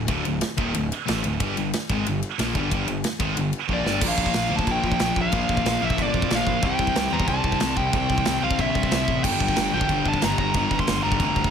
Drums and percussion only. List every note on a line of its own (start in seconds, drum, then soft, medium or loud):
0.08 kick loud
0.08 ride loud
0.25 ride medium
0.41 snare loud
0.41 ride loud
0.58 kick loud
0.58 ride medium
0.74 ride medium
0.92 ride medium
1.08 snare loud
1.08 ride loud
1.24 ride medium
1.40 kick loud
1.40 ride loud
1.57 ride medium
1.73 snare loud
1.73 ride loud
1.89 kick loud
1.89 ride medium
2.06 ride medium
2.23 ride medium
2.39 snare loud
2.39 ride medium
2.55 kick loud
2.55 ride medium
2.71 kick loud
2.71 ride loud
2.88 ride medium
3.04 snare loud
3.04 ride loud
3.20 kick loud
3.20 ride medium
3.37 ride medium
3.53 ride medium
3.69 kick medium
3.86 snare medium
4.01 kick loud
4.01 crash loud
4.01 china medium
4.18 kick medium
4.26 kick medium
4.34 snare loud
4.34 china medium
4.59 kick medium
4.67 kick medium
4.67 china medium
4.84 kick medium
4.92 kick medium
4.99 snare loud
4.99 china medium
5.16 kick medium
5.32 kick loud
5.32 china medium
5.49 kick medium
5.57 kick medium
5.66 snare loud
5.66 china medium
5.90 kick medium
5.98 kick medium
5.98 china medium
6.14 kick medium
6.22 kick medium
6.30 snare loud
6.30 china medium
6.47 kick medium
6.62 kick loud
6.62 china medium
6.79 kick loud
6.87 kick medium
6.95 snare loud
6.95 china medium
7.20 kick medium
7.28 kick loud
7.28 china medium
7.44 kick medium
7.52 kick medium
7.60 snare loud
7.60 china medium
7.77 kick medium
7.93 kick loud
7.93 china medium
8.10 kick medium
8.18 kick medium
8.25 snare loud
8.25 china medium
8.51 kick medium
8.59 kick loud
8.59 china medium
8.75 kick medium
8.83 kick loud
8.91 snare loud
8.91 china medium
9.08 kick medium
9.24 kick loud
9.24 crash loud
9.24 china medium
9.40 kick medium
9.48 kick medium
9.56 snare loud
9.56 china medium
9.81 kick medium
9.89 kick medium
9.89 china medium
10.06 kick medium
10.14 kick medium
10.22 snare loud
10.22 china medium
10.38 kick medium
10.54 kick loud
10.54 china medium
10.71 kick medium
10.79 kick medium
10.87 snare loud
10.87 china medium
11.12 kick medium
11.20 kick medium
11.20 china medium
11.36 kick medium
11.44 kick medium